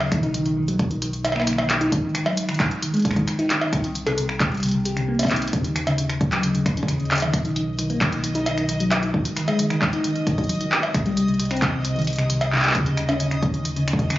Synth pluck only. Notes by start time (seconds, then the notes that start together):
0.00 C#3
0.12 D#3
0.23 D#4
0.34 D#3
0.46 D#3
0.57 D#3
0.68 F#3
0.91 D#3
1.02 D#3
1.25 D#3
1.36 A#3
1.47 D#3
1.58 D#3
1.70 D#3
1.81 D#4
1.92 D#3
2.03 D#3
2.15 D#3
2.26 F#3
2.49 D#3
2.60 D#3
2.82 D#3
2.94 G#3
3.05 D#3
3.16 D#3
3.27 D#3
3.39 D#4
3.50 D#3
3.61 D#3
3.73 C3
3.84 D#3
4.07 C3
4.18 C3
4.40 C3
4.52 G3
4.63 C3
4.74 C3
4.85 G4
4.97 C3
5.08 A#3
5.19 C4
5.31 D#4
5.53 C#3
5.64 D#3
5.87 C#3
5.98 C#3
6.21 C#3
6.32 F#3
6.43 C#3
6.55 C#3
6.66 C#3
6.77 C#4
6.88 C#3
7.00 C#3
7.11 C#3
7.22 D#3
7.45 D#3
7.56 D#3
7.79 D#3
7.90 A#3
8.01 D#3
8.12 D#3
8.24 D#3
8.35 D#4
8.46 D#3
8.58 D#3
8.69 D#3
8.80 F#3
9.03 D#3
9.14 D#3
9.37 D#3
9.48 G#3
9.59 D#3
9.70 D#3
9.82 D#3
9.93 D#4
10.04 D#3
10.16 D#3
10.27 D#3
10.38 F#3
10.61 D#3
10.72 D#3
10.94 C3
11.06 G3
11.17 C3
11.28 C3
11.40 C3
11.51 C4
11.62 C3
11.73 C3
11.85 C3
11.96 D#3
12.19 C3
12.30 C3
12.52 C3
12.64 G3
12.75 C#3
12.86 C#3
12.97 C#3
13.09 C#4
13.20 C#3
13.31 C#3
13.43 C#3
13.54 D#3
13.76 C#3
13.88 C#3
14.10 C#3